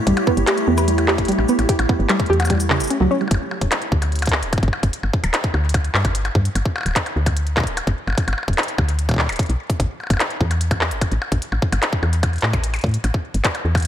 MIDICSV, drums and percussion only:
0, 0, Header, 1, 3, 480
1, 0, Start_track
1, 0, Tempo, 405405
1, 81, Time_signature, 4, 2, 24, 8
1, 16424, End_track
2, 0, Start_track
2, 0, Title_t, "Percussion blips"
2, 201, Note_on_c, 9, 76, 83
2, 319, Note_off_c, 9, 76, 0
2, 560, Note_on_c, 9, 76, 61
2, 678, Note_off_c, 9, 76, 0
2, 921, Note_on_c, 9, 56, 98
2, 1039, Note_off_c, 9, 56, 0
2, 1162, Note_on_c, 9, 76, 54
2, 1280, Note_off_c, 9, 76, 0
2, 1641, Note_on_c, 9, 76, 36
2, 1759, Note_off_c, 9, 76, 0
2, 1880, Note_on_c, 9, 76, 55
2, 1999, Note_off_c, 9, 76, 0
2, 2120, Note_on_c, 9, 76, 83
2, 2238, Note_off_c, 9, 76, 0
2, 2479, Note_on_c, 9, 76, 65
2, 2598, Note_off_c, 9, 76, 0
2, 2839, Note_on_c, 9, 56, 90
2, 2839, Note_on_c, 9, 76, 58
2, 2870, Note_off_c, 9, 76, 0
2, 2870, Note_on_c, 9, 76, 50
2, 2900, Note_off_c, 9, 76, 0
2, 2900, Note_on_c, 9, 76, 42
2, 2929, Note_off_c, 9, 76, 0
2, 2929, Note_on_c, 9, 76, 33
2, 2958, Note_off_c, 9, 56, 0
2, 2960, Note_off_c, 9, 76, 0
2, 2960, Note_on_c, 9, 76, 30
2, 2989, Note_off_c, 9, 76, 0
2, 2989, Note_on_c, 9, 76, 24
2, 3019, Note_off_c, 9, 76, 0
2, 3019, Note_on_c, 9, 76, 20
2, 3050, Note_off_c, 9, 76, 0
2, 3050, Note_on_c, 9, 76, 16
2, 3168, Note_off_c, 9, 76, 0
2, 3800, Note_on_c, 9, 76, 26
2, 3880, Note_off_c, 9, 76, 0
2, 3880, Note_on_c, 9, 76, 35
2, 3960, Note_off_c, 9, 76, 0
2, 3960, Note_on_c, 9, 76, 41
2, 4078, Note_off_c, 9, 76, 0
2, 4160, Note_on_c, 9, 76, 49
2, 4278, Note_off_c, 9, 76, 0
2, 4400, Note_on_c, 9, 76, 76
2, 4518, Note_off_c, 9, 76, 0
2, 4760, Note_on_c, 9, 76, 50
2, 4878, Note_off_c, 9, 76, 0
2, 5000, Note_on_c, 9, 76, 81
2, 5118, Note_off_c, 9, 76, 0
2, 5360, Note_on_c, 9, 76, 54
2, 5478, Note_off_c, 9, 76, 0
2, 5599, Note_on_c, 9, 76, 79
2, 5718, Note_off_c, 9, 76, 0
2, 5959, Note_on_c, 9, 76, 50
2, 6078, Note_off_c, 9, 76, 0
2, 6200, Note_on_c, 9, 76, 75
2, 6318, Note_off_c, 9, 76, 0
2, 6560, Note_on_c, 9, 76, 52
2, 6678, Note_off_c, 9, 76, 0
2, 6799, Note_on_c, 9, 76, 77
2, 6918, Note_off_c, 9, 76, 0
2, 7160, Note_on_c, 9, 76, 52
2, 7279, Note_off_c, 9, 76, 0
2, 7400, Note_on_c, 9, 76, 75
2, 7518, Note_off_c, 9, 76, 0
2, 7761, Note_on_c, 9, 76, 50
2, 7879, Note_off_c, 9, 76, 0
2, 8000, Note_on_c, 9, 76, 66
2, 8030, Note_off_c, 9, 76, 0
2, 8030, Note_on_c, 9, 76, 52
2, 8060, Note_off_c, 9, 76, 0
2, 8060, Note_on_c, 9, 76, 46
2, 8090, Note_off_c, 9, 76, 0
2, 8090, Note_on_c, 9, 76, 37
2, 8121, Note_off_c, 9, 76, 0
2, 8121, Note_on_c, 9, 76, 32
2, 8151, Note_off_c, 9, 76, 0
2, 8151, Note_on_c, 9, 76, 27
2, 8181, Note_off_c, 9, 76, 0
2, 8181, Note_on_c, 9, 76, 22
2, 8212, Note_off_c, 9, 76, 0
2, 8212, Note_on_c, 9, 76, 19
2, 8330, Note_off_c, 9, 76, 0
2, 8362, Note_on_c, 9, 76, 48
2, 8480, Note_off_c, 9, 76, 0
2, 8601, Note_on_c, 9, 76, 71
2, 8720, Note_off_c, 9, 76, 0
2, 8960, Note_on_c, 9, 76, 53
2, 9079, Note_off_c, 9, 76, 0
2, 9201, Note_on_c, 9, 76, 81
2, 9319, Note_off_c, 9, 76, 0
2, 9560, Note_on_c, 9, 76, 48
2, 9591, Note_off_c, 9, 76, 0
2, 9591, Note_on_c, 9, 76, 38
2, 9620, Note_off_c, 9, 76, 0
2, 9620, Note_on_c, 9, 76, 32
2, 9651, Note_off_c, 9, 76, 0
2, 9651, Note_on_c, 9, 76, 27
2, 9710, Note_off_c, 9, 76, 0
2, 9710, Note_on_c, 9, 76, 19
2, 9740, Note_off_c, 9, 76, 0
2, 9740, Note_on_c, 9, 76, 15
2, 9769, Note_off_c, 9, 76, 0
2, 9769, Note_on_c, 9, 76, 12
2, 9801, Note_off_c, 9, 76, 0
2, 9801, Note_on_c, 9, 76, 68
2, 9860, Note_off_c, 9, 76, 0
2, 9860, Note_on_c, 9, 76, 58
2, 9921, Note_off_c, 9, 76, 0
2, 9921, Note_on_c, 9, 76, 42
2, 9981, Note_off_c, 9, 76, 0
2, 9981, Note_on_c, 9, 76, 36
2, 10100, Note_off_c, 9, 76, 0
2, 10161, Note_on_c, 9, 76, 47
2, 10279, Note_off_c, 9, 76, 0
2, 10400, Note_on_c, 9, 76, 73
2, 10518, Note_off_c, 9, 76, 0
2, 10761, Note_on_c, 9, 76, 51
2, 10879, Note_off_c, 9, 76, 0
2, 11002, Note_on_c, 9, 76, 70
2, 11120, Note_off_c, 9, 76, 0
2, 11841, Note_on_c, 9, 76, 21
2, 11882, Note_off_c, 9, 76, 0
2, 11882, Note_on_c, 9, 76, 25
2, 11921, Note_off_c, 9, 76, 0
2, 11921, Note_on_c, 9, 76, 27
2, 11961, Note_off_c, 9, 76, 0
2, 11961, Note_on_c, 9, 76, 33
2, 12000, Note_off_c, 9, 76, 0
2, 12000, Note_on_c, 9, 76, 38
2, 12040, Note_off_c, 9, 76, 0
2, 12040, Note_on_c, 9, 76, 42
2, 12081, Note_off_c, 9, 76, 0
2, 12081, Note_on_c, 9, 76, 68
2, 12199, Note_off_c, 9, 76, 0
2, 12441, Note_on_c, 9, 76, 46
2, 12560, Note_off_c, 9, 76, 0
2, 12681, Note_on_c, 9, 76, 71
2, 12800, Note_off_c, 9, 76, 0
2, 13042, Note_on_c, 9, 76, 52
2, 13160, Note_off_c, 9, 76, 0
2, 13281, Note_on_c, 9, 76, 75
2, 13399, Note_off_c, 9, 76, 0
2, 13641, Note_on_c, 9, 76, 50
2, 13760, Note_off_c, 9, 76, 0
2, 13882, Note_on_c, 9, 76, 75
2, 14000, Note_off_c, 9, 76, 0
2, 14241, Note_on_c, 9, 76, 51
2, 14360, Note_off_c, 9, 76, 0
2, 14481, Note_on_c, 9, 76, 76
2, 14599, Note_off_c, 9, 76, 0
2, 14841, Note_on_c, 9, 76, 50
2, 14959, Note_off_c, 9, 76, 0
2, 15080, Note_on_c, 9, 76, 76
2, 15198, Note_off_c, 9, 76, 0
2, 15439, Note_on_c, 9, 76, 54
2, 15558, Note_off_c, 9, 76, 0
2, 16040, Note_on_c, 9, 76, 52
2, 16158, Note_off_c, 9, 76, 0
2, 16280, Note_on_c, 9, 76, 82
2, 16398, Note_off_c, 9, 76, 0
2, 16424, End_track
3, 0, Start_track
3, 0, Title_t, "Drums"
3, 81, Note_on_c, 9, 36, 115
3, 81, Note_on_c, 9, 42, 67
3, 199, Note_off_c, 9, 42, 0
3, 200, Note_off_c, 9, 36, 0
3, 201, Note_on_c, 9, 42, 37
3, 319, Note_off_c, 9, 42, 0
3, 321, Note_on_c, 9, 36, 115
3, 439, Note_off_c, 9, 36, 0
3, 441, Note_on_c, 9, 42, 50
3, 559, Note_off_c, 9, 42, 0
3, 560, Note_on_c, 9, 39, 111
3, 560, Note_on_c, 9, 42, 63
3, 678, Note_off_c, 9, 39, 0
3, 678, Note_off_c, 9, 42, 0
3, 681, Note_on_c, 9, 42, 36
3, 799, Note_off_c, 9, 42, 0
3, 921, Note_on_c, 9, 42, 51
3, 921, Note_on_c, 9, 69, 81
3, 1039, Note_off_c, 9, 42, 0
3, 1039, Note_off_c, 9, 69, 0
3, 1041, Note_on_c, 9, 42, 67
3, 1159, Note_off_c, 9, 42, 0
3, 1162, Note_on_c, 9, 42, 37
3, 1280, Note_off_c, 9, 42, 0
3, 1280, Note_on_c, 9, 39, 120
3, 1399, Note_off_c, 9, 39, 0
3, 1401, Note_on_c, 9, 36, 102
3, 1402, Note_on_c, 9, 42, 48
3, 1481, Note_off_c, 9, 42, 0
3, 1481, Note_on_c, 9, 42, 41
3, 1519, Note_off_c, 9, 36, 0
3, 1521, Note_off_c, 9, 42, 0
3, 1521, Note_on_c, 9, 42, 71
3, 1561, Note_off_c, 9, 42, 0
3, 1561, Note_on_c, 9, 42, 34
3, 1679, Note_off_c, 9, 42, 0
3, 1760, Note_on_c, 9, 69, 64
3, 1879, Note_off_c, 9, 69, 0
3, 1880, Note_on_c, 9, 42, 53
3, 1999, Note_off_c, 9, 42, 0
3, 2000, Note_on_c, 9, 42, 71
3, 2001, Note_on_c, 9, 36, 120
3, 2119, Note_off_c, 9, 36, 0
3, 2119, Note_off_c, 9, 42, 0
3, 2120, Note_on_c, 9, 42, 38
3, 2238, Note_off_c, 9, 42, 0
3, 2241, Note_on_c, 9, 36, 118
3, 2359, Note_off_c, 9, 36, 0
3, 2479, Note_on_c, 9, 39, 110
3, 2479, Note_on_c, 9, 42, 64
3, 2598, Note_off_c, 9, 39, 0
3, 2598, Note_off_c, 9, 42, 0
3, 2599, Note_on_c, 9, 42, 36
3, 2601, Note_on_c, 9, 36, 110
3, 2679, Note_off_c, 9, 42, 0
3, 2679, Note_on_c, 9, 42, 28
3, 2719, Note_off_c, 9, 36, 0
3, 2760, Note_off_c, 9, 42, 0
3, 2760, Note_on_c, 9, 42, 24
3, 2839, Note_off_c, 9, 42, 0
3, 2839, Note_on_c, 9, 42, 56
3, 2900, Note_on_c, 9, 69, 77
3, 2958, Note_off_c, 9, 42, 0
3, 2960, Note_on_c, 9, 36, 83
3, 2960, Note_on_c, 9, 42, 68
3, 3018, Note_off_c, 9, 69, 0
3, 3078, Note_off_c, 9, 42, 0
3, 3079, Note_off_c, 9, 36, 0
3, 3080, Note_on_c, 9, 42, 38
3, 3080, Note_on_c, 9, 69, 80
3, 3198, Note_off_c, 9, 42, 0
3, 3198, Note_off_c, 9, 69, 0
3, 3198, Note_on_c, 9, 39, 121
3, 3317, Note_off_c, 9, 39, 0
3, 3319, Note_on_c, 9, 42, 54
3, 3319, Note_on_c, 9, 69, 76
3, 3360, Note_off_c, 9, 69, 0
3, 3360, Note_on_c, 9, 69, 64
3, 3400, Note_off_c, 9, 69, 0
3, 3400, Note_on_c, 9, 69, 52
3, 3438, Note_off_c, 9, 42, 0
3, 3439, Note_on_c, 9, 42, 75
3, 3518, Note_off_c, 9, 69, 0
3, 3558, Note_off_c, 9, 42, 0
3, 3919, Note_on_c, 9, 42, 67
3, 3920, Note_on_c, 9, 36, 115
3, 4038, Note_off_c, 9, 42, 0
3, 4039, Note_off_c, 9, 36, 0
3, 4279, Note_on_c, 9, 42, 53
3, 4280, Note_on_c, 9, 36, 101
3, 4398, Note_off_c, 9, 42, 0
3, 4399, Note_off_c, 9, 36, 0
3, 4400, Note_on_c, 9, 39, 111
3, 4400, Note_on_c, 9, 42, 66
3, 4518, Note_off_c, 9, 39, 0
3, 4518, Note_off_c, 9, 42, 0
3, 4519, Note_on_c, 9, 42, 34
3, 4637, Note_off_c, 9, 42, 0
3, 4640, Note_on_c, 9, 36, 114
3, 4759, Note_off_c, 9, 36, 0
3, 4760, Note_on_c, 9, 42, 54
3, 4878, Note_off_c, 9, 42, 0
3, 4879, Note_on_c, 9, 42, 30
3, 4920, Note_off_c, 9, 42, 0
3, 4920, Note_on_c, 9, 42, 36
3, 4960, Note_off_c, 9, 42, 0
3, 4960, Note_on_c, 9, 42, 40
3, 5000, Note_off_c, 9, 42, 0
3, 5000, Note_on_c, 9, 42, 47
3, 5039, Note_off_c, 9, 42, 0
3, 5039, Note_on_c, 9, 42, 52
3, 5060, Note_on_c, 9, 36, 103
3, 5080, Note_off_c, 9, 42, 0
3, 5080, Note_on_c, 9, 42, 57
3, 5120, Note_on_c, 9, 39, 116
3, 5178, Note_off_c, 9, 36, 0
3, 5198, Note_off_c, 9, 42, 0
3, 5238, Note_off_c, 9, 39, 0
3, 5241, Note_on_c, 9, 42, 54
3, 5359, Note_off_c, 9, 42, 0
3, 5360, Note_on_c, 9, 36, 112
3, 5360, Note_on_c, 9, 42, 68
3, 5420, Note_off_c, 9, 36, 0
3, 5420, Note_on_c, 9, 36, 95
3, 5478, Note_off_c, 9, 42, 0
3, 5480, Note_off_c, 9, 36, 0
3, 5480, Note_on_c, 9, 36, 68
3, 5480, Note_on_c, 9, 42, 35
3, 5540, Note_off_c, 9, 36, 0
3, 5540, Note_on_c, 9, 36, 56
3, 5599, Note_off_c, 9, 42, 0
3, 5659, Note_off_c, 9, 36, 0
3, 5720, Note_on_c, 9, 36, 103
3, 5720, Note_on_c, 9, 42, 54
3, 5838, Note_off_c, 9, 36, 0
3, 5839, Note_off_c, 9, 42, 0
3, 5839, Note_on_c, 9, 42, 67
3, 5958, Note_off_c, 9, 42, 0
3, 6080, Note_on_c, 9, 36, 125
3, 6198, Note_off_c, 9, 36, 0
3, 6200, Note_on_c, 9, 42, 53
3, 6318, Note_off_c, 9, 42, 0
3, 6319, Note_on_c, 9, 39, 112
3, 6319, Note_on_c, 9, 42, 62
3, 6438, Note_off_c, 9, 39, 0
3, 6438, Note_off_c, 9, 42, 0
3, 6439, Note_on_c, 9, 42, 36
3, 6440, Note_on_c, 9, 36, 106
3, 6558, Note_off_c, 9, 36, 0
3, 6558, Note_off_c, 9, 42, 0
3, 6740, Note_on_c, 9, 42, 52
3, 6799, Note_off_c, 9, 42, 0
3, 6799, Note_on_c, 9, 42, 71
3, 6800, Note_on_c, 9, 36, 117
3, 6918, Note_off_c, 9, 36, 0
3, 6918, Note_off_c, 9, 42, 0
3, 6921, Note_on_c, 9, 42, 37
3, 7039, Note_off_c, 9, 42, 0
3, 7040, Note_on_c, 9, 39, 121
3, 7159, Note_off_c, 9, 39, 0
3, 7160, Note_on_c, 9, 36, 105
3, 7160, Note_on_c, 9, 42, 52
3, 7278, Note_off_c, 9, 36, 0
3, 7279, Note_off_c, 9, 42, 0
3, 7280, Note_on_c, 9, 42, 72
3, 7399, Note_off_c, 9, 42, 0
3, 7400, Note_on_c, 9, 42, 34
3, 7518, Note_off_c, 9, 42, 0
3, 7520, Note_on_c, 9, 36, 122
3, 7638, Note_off_c, 9, 36, 0
3, 7640, Note_on_c, 9, 42, 55
3, 7759, Note_off_c, 9, 42, 0
3, 7761, Note_on_c, 9, 42, 63
3, 7879, Note_off_c, 9, 42, 0
3, 7880, Note_on_c, 9, 36, 100
3, 7998, Note_off_c, 9, 36, 0
3, 8121, Note_on_c, 9, 42, 54
3, 8239, Note_off_c, 9, 42, 0
3, 8240, Note_on_c, 9, 36, 118
3, 8241, Note_on_c, 9, 39, 114
3, 8241, Note_on_c, 9, 42, 63
3, 8358, Note_off_c, 9, 36, 0
3, 8360, Note_off_c, 9, 39, 0
3, 8360, Note_off_c, 9, 42, 0
3, 8362, Note_on_c, 9, 42, 36
3, 8480, Note_off_c, 9, 42, 0
3, 8600, Note_on_c, 9, 36, 109
3, 8601, Note_on_c, 9, 42, 54
3, 8718, Note_off_c, 9, 36, 0
3, 8720, Note_off_c, 9, 42, 0
3, 8721, Note_on_c, 9, 42, 67
3, 8840, Note_off_c, 9, 42, 0
3, 8840, Note_on_c, 9, 42, 37
3, 8959, Note_off_c, 9, 42, 0
3, 8960, Note_on_c, 9, 36, 110
3, 8960, Note_on_c, 9, 39, 122
3, 9000, Note_off_c, 9, 36, 0
3, 9000, Note_on_c, 9, 36, 93
3, 9040, Note_off_c, 9, 36, 0
3, 9040, Note_on_c, 9, 36, 73
3, 9079, Note_off_c, 9, 39, 0
3, 9082, Note_on_c, 9, 42, 54
3, 9159, Note_off_c, 9, 36, 0
3, 9200, Note_off_c, 9, 42, 0
3, 9201, Note_on_c, 9, 42, 70
3, 9319, Note_off_c, 9, 42, 0
3, 9320, Note_on_c, 9, 36, 99
3, 9321, Note_on_c, 9, 42, 36
3, 9439, Note_off_c, 9, 36, 0
3, 9439, Note_off_c, 9, 42, 0
3, 9680, Note_on_c, 9, 36, 125
3, 9681, Note_on_c, 9, 42, 61
3, 9799, Note_off_c, 9, 36, 0
3, 9799, Note_off_c, 9, 42, 0
3, 9801, Note_on_c, 9, 42, 37
3, 9919, Note_off_c, 9, 42, 0
3, 10041, Note_on_c, 9, 36, 111
3, 10042, Note_on_c, 9, 42, 24
3, 10101, Note_off_c, 9, 42, 0
3, 10101, Note_on_c, 9, 42, 31
3, 10159, Note_off_c, 9, 36, 0
3, 10161, Note_off_c, 9, 42, 0
3, 10161, Note_on_c, 9, 39, 116
3, 10161, Note_on_c, 9, 42, 34
3, 10221, Note_off_c, 9, 42, 0
3, 10221, Note_on_c, 9, 42, 59
3, 10279, Note_off_c, 9, 39, 0
3, 10281, Note_off_c, 9, 42, 0
3, 10281, Note_on_c, 9, 42, 35
3, 10399, Note_off_c, 9, 42, 0
3, 10401, Note_on_c, 9, 36, 122
3, 10519, Note_off_c, 9, 36, 0
3, 10521, Note_on_c, 9, 42, 51
3, 10639, Note_off_c, 9, 42, 0
3, 10641, Note_on_c, 9, 42, 65
3, 10759, Note_off_c, 9, 42, 0
3, 10760, Note_on_c, 9, 36, 104
3, 10761, Note_on_c, 9, 42, 35
3, 10790, Note_off_c, 9, 36, 0
3, 10790, Note_on_c, 9, 36, 85
3, 10820, Note_off_c, 9, 36, 0
3, 10820, Note_on_c, 9, 36, 70
3, 10850, Note_off_c, 9, 36, 0
3, 10850, Note_on_c, 9, 36, 56
3, 10879, Note_off_c, 9, 42, 0
3, 10880, Note_off_c, 9, 36, 0
3, 10880, Note_on_c, 9, 36, 44
3, 10880, Note_on_c, 9, 39, 120
3, 10910, Note_off_c, 9, 36, 0
3, 10910, Note_on_c, 9, 36, 36
3, 10940, Note_off_c, 9, 36, 0
3, 10940, Note_on_c, 9, 36, 30
3, 10970, Note_off_c, 9, 36, 0
3, 10970, Note_on_c, 9, 36, 24
3, 10999, Note_off_c, 9, 39, 0
3, 11002, Note_on_c, 9, 42, 48
3, 11041, Note_off_c, 9, 42, 0
3, 11041, Note_on_c, 9, 42, 38
3, 11081, Note_off_c, 9, 42, 0
3, 11081, Note_on_c, 9, 42, 33
3, 11089, Note_off_c, 9, 36, 0
3, 11120, Note_on_c, 9, 36, 127
3, 11122, Note_off_c, 9, 42, 0
3, 11122, Note_on_c, 9, 42, 67
3, 11163, Note_off_c, 9, 42, 0
3, 11163, Note_on_c, 9, 42, 23
3, 11203, Note_off_c, 9, 42, 0
3, 11203, Note_on_c, 9, 42, 19
3, 11239, Note_off_c, 9, 36, 0
3, 11243, Note_off_c, 9, 42, 0
3, 11243, Note_on_c, 9, 42, 35
3, 11361, Note_off_c, 9, 42, 0
3, 11481, Note_on_c, 9, 36, 107
3, 11482, Note_on_c, 9, 42, 51
3, 11599, Note_off_c, 9, 36, 0
3, 11600, Note_off_c, 9, 42, 0
3, 11600, Note_on_c, 9, 36, 118
3, 11601, Note_on_c, 9, 42, 64
3, 11719, Note_off_c, 9, 36, 0
3, 11720, Note_off_c, 9, 42, 0
3, 11961, Note_on_c, 9, 36, 107
3, 11961, Note_on_c, 9, 42, 50
3, 12079, Note_off_c, 9, 36, 0
3, 12080, Note_off_c, 9, 42, 0
3, 12081, Note_on_c, 9, 39, 112
3, 12081, Note_on_c, 9, 42, 57
3, 12199, Note_off_c, 9, 39, 0
3, 12199, Note_off_c, 9, 42, 0
3, 12201, Note_on_c, 9, 42, 32
3, 12319, Note_off_c, 9, 42, 0
3, 12321, Note_on_c, 9, 36, 116
3, 12439, Note_off_c, 9, 36, 0
3, 12441, Note_on_c, 9, 42, 49
3, 12560, Note_off_c, 9, 42, 0
3, 12560, Note_on_c, 9, 42, 64
3, 12679, Note_off_c, 9, 42, 0
3, 12681, Note_on_c, 9, 36, 106
3, 12681, Note_on_c, 9, 42, 35
3, 12799, Note_off_c, 9, 36, 0
3, 12800, Note_off_c, 9, 42, 0
3, 12800, Note_on_c, 9, 39, 111
3, 12919, Note_off_c, 9, 39, 0
3, 12921, Note_on_c, 9, 42, 52
3, 13039, Note_off_c, 9, 42, 0
3, 13041, Note_on_c, 9, 36, 113
3, 13042, Note_on_c, 9, 42, 68
3, 13160, Note_off_c, 9, 36, 0
3, 13160, Note_off_c, 9, 42, 0
3, 13161, Note_on_c, 9, 42, 33
3, 13280, Note_off_c, 9, 42, 0
3, 13401, Note_on_c, 9, 36, 101
3, 13401, Note_on_c, 9, 42, 49
3, 13520, Note_off_c, 9, 36, 0
3, 13520, Note_off_c, 9, 42, 0
3, 13521, Note_on_c, 9, 42, 61
3, 13640, Note_off_c, 9, 42, 0
3, 13761, Note_on_c, 9, 36, 119
3, 13880, Note_off_c, 9, 36, 0
3, 13882, Note_on_c, 9, 42, 48
3, 14000, Note_off_c, 9, 42, 0
3, 14001, Note_on_c, 9, 39, 106
3, 14001, Note_on_c, 9, 42, 61
3, 14120, Note_off_c, 9, 39, 0
3, 14120, Note_off_c, 9, 42, 0
3, 14121, Note_on_c, 9, 36, 99
3, 14240, Note_off_c, 9, 36, 0
3, 14361, Note_on_c, 9, 42, 47
3, 14480, Note_off_c, 9, 42, 0
3, 14481, Note_on_c, 9, 36, 110
3, 14481, Note_on_c, 9, 42, 64
3, 14599, Note_off_c, 9, 36, 0
3, 14599, Note_off_c, 9, 42, 0
3, 14602, Note_on_c, 9, 42, 15
3, 14632, Note_off_c, 9, 42, 0
3, 14632, Note_on_c, 9, 42, 19
3, 14660, Note_off_c, 9, 42, 0
3, 14660, Note_on_c, 9, 42, 25
3, 14690, Note_off_c, 9, 42, 0
3, 14690, Note_on_c, 9, 42, 27
3, 14720, Note_on_c, 9, 39, 112
3, 14809, Note_off_c, 9, 42, 0
3, 14838, Note_off_c, 9, 39, 0
3, 14841, Note_on_c, 9, 36, 101
3, 14841, Note_on_c, 9, 42, 50
3, 14959, Note_off_c, 9, 36, 0
3, 14959, Note_off_c, 9, 42, 0
3, 14961, Note_on_c, 9, 42, 62
3, 15079, Note_off_c, 9, 42, 0
3, 15080, Note_on_c, 9, 42, 30
3, 15110, Note_off_c, 9, 42, 0
3, 15110, Note_on_c, 9, 42, 26
3, 15140, Note_off_c, 9, 42, 0
3, 15140, Note_on_c, 9, 42, 20
3, 15170, Note_off_c, 9, 42, 0
3, 15170, Note_on_c, 9, 42, 17
3, 15201, Note_on_c, 9, 36, 117
3, 15230, Note_off_c, 9, 42, 0
3, 15230, Note_on_c, 9, 42, 12
3, 15261, Note_off_c, 9, 42, 0
3, 15261, Note_on_c, 9, 42, 10
3, 15290, Note_off_c, 9, 42, 0
3, 15290, Note_on_c, 9, 42, 9
3, 15319, Note_off_c, 9, 36, 0
3, 15320, Note_off_c, 9, 42, 0
3, 15320, Note_on_c, 9, 42, 50
3, 15438, Note_off_c, 9, 42, 0
3, 15439, Note_on_c, 9, 42, 63
3, 15558, Note_off_c, 9, 42, 0
3, 15560, Note_on_c, 9, 36, 91
3, 15678, Note_off_c, 9, 36, 0
3, 15799, Note_on_c, 9, 42, 52
3, 15918, Note_off_c, 9, 42, 0
3, 15919, Note_on_c, 9, 39, 110
3, 15919, Note_on_c, 9, 42, 62
3, 15920, Note_on_c, 9, 36, 108
3, 16037, Note_off_c, 9, 39, 0
3, 16037, Note_off_c, 9, 42, 0
3, 16039, Note_off_c, 9, 36, 0
3, 16040, Note_on_c, 9, 42, 36
3, 16158, Note_off_c, 9, 42, 0
3, 16280, Note_on_c, 9, 36, 98
3, 16280, Note_on_c, 9, 42, 23
3, 16309, Note_off_c, 9, 42, 0
3, 16309, Note_on_c, 9, 42, 30
3, 16339, Note_off_c, 9, 42, 0
3, 16339, Note_on_c, 9, 42, 36
3, 16368, Note_off_c, 9, 42, 0
3, 16368, Note_on_c, 9, 42, 42
3, 16398, Note_off_c, 9, 36, 0
3, 16424, Note_off_c, 9, 42, 0
3, 16424, End_track
0, 0, End_of_file